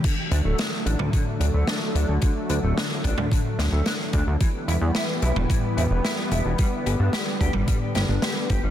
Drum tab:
CC |x---------------|----------------|----------------|----------------|
HH |x-x-x-x-x-x-x-x-|x-x-x-x-x-x-x-x-|x-x-x-x-x-x-x-x-|x-x-x-x-x-x-x-x-|
SD |----o-------o---|----o-----o-o---|----o-------o---|----o-----o-o---|
T2 |-------o--------|-------o--------|-------o--------|-------o--------|
BD |o-------o-------|o-----o-o-----o-|o-------o-------|o-----o-o-----o-|